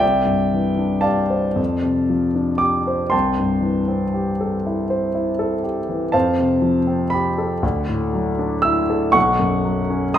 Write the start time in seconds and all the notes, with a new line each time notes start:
0.00 C2 D5 E5 G5
0.25 G2
0.53 E3
0.78 D4
1.01 G4 D5 F5 A5
1.30 C5
1.56 F2
1.82 C3
2.10 F3
2.35 D4
2.58 G4 D6
2.87 C5
3.10 C2 G5 A5 C6
3.38 G2
3.61 E3
3.88 C4
4.14 G4
4.41 A4
4.66 E4
4.90 C5
5.15 E4
5.39 A4
5.63 G4
5.89 E3
6.12 F2 C5 F5 A5
6.39 C3
6.62 F3
6.87 C4
7.10 G4 B5
7.38 A4
7.63 D2
7.88 A2
8.13 F#3
8.39 D4
8.62 E4 E6
8.90 A4
9.12 B1 F#5 C#6
9.39 F#2
9.64 F#3
9.90 C#4
10.14 A#5 C6 D#6